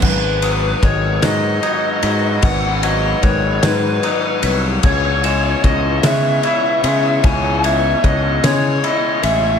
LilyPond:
<<
  \new Staff \with { instrumentName = "Glockenspiel" } { \time 6/8 \key gis \minor \tempo 4. = 50 fis'''8 dis'''4 fis'''8 gis'''8 b'''8~ | b'''8 gis'''8 fis'''8 gis'''4 b'''8 | gis'''8 e''''4 fis'''8 gis'''8 b'''8~ | b'''8 gis'''8 fis'''8 gis'''4 b'''8 | }
  \new Staff \with { instrumentName = "Lead electric guitar" } { \time 6/8 \key gis \minor b'4 cis''8 dis''4. | fis''8 dis''8 cis''8 b'4 r8 | cis''4 dis''8 e''4. | gis''8 e''8 dis''8 cis''8 dis''8 e''8 | }
  \new Staff \with { instrumentName = "Analog synth pad" } { \time 6/8 \key gis \minor <gis fis' b'>2.~ | <gis fis' b'>2. | <b e' cis''>2.~ | <b e' cis''>2. | }
  \new Staff \with { instrumentName = "Clean electric guitar" } { \clef bass \time 6/8 \key gis \minor gis,8 fis8 dis8 fis8 dis'8 fis8 | gis,8 fis8 dis8 fis8 dis'8 fis8 | cis8 gis8 cis8 gis8 e'8 gis8 | cis8 gis8 cis8 gis8 e'8 gis8 | }
  \new Staff \with { instrumentName = "Fingered electric bass" } { \clef bass \time 6/8 \key gis \minor gis,,4 gis,,8 gis,8 r8 gis,8 | gis,,4 gis,,8 gis,8 r8 bis,,8 | cis,4 cis,8 cis8 r8 cis8 | cis,4 cis,8 cis8 r8 a,,8 | }
  \new DrumStaff \with { instrumentName = "Drums" } \drummode { \time 6/8 <cymc bd>8 cymr8 <bd cymr>8 <cymr sn>8 cymr8 cymr8 | <bd cymr>8 cymr8 <bd cymr>8 <cymr sn>8 cymr8 cymr8 | <bd cymr>8 cymr8 <bd cymr>8 <cymr sn>8 cymr8 cymr8 | <bd cymr>8 cymr8 <bd cymr>8 <cymr sn>8 cymr8 cymr8 | }
>>